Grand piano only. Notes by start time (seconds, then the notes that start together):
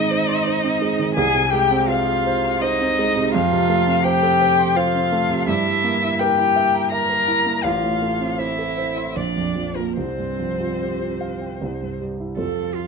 Already playing: G#2 D#3 G#3 C4 G#4 C5
0.11 C5
0.28 C6
0.47 C5
0.64 C4
0.82 G#3
0.99 D#3
1.17 C2
1.35 C3
1.53 G#3
1.71 C4
1.89 C5
2.07 G#4
2.26 C5
2.44 C6
2.63 C5
2.81 C4
2.99 G#3
3.16 C3
3.34 F2
3.52 C3
3.69 A3
3.87 C4
4.05 C5
4.23 A4
4.41 C5
4.59 C6
4.76 C5
4.95 C4
5.12 A3
5.30 C3
5.47 G2
5.66 G3
5.84 A#3
6.02 E4
6.21 A#4
6.38 E4
6.56 E5
6.74 A#5
6.92 E5
7.09 A#4
7.28 E4
7.46 A#3
7.64 A1
7.83 A2
8.02 A3
8.20 C4
8.38 C5
8.59 A4
8.78 C5
8.97 C6
9.16 A#1
9.36 F2
9.55 F3
9.76 F4
9.97 C2
10.18 G2
10.39 F3
10.60 F4
10.80 G4
11.00 F4
11.21 F5
11.41 G5
11.62 C2
11.81 G2
12.01 G3
12.20 E4
12.37 F2 F3 F4 A4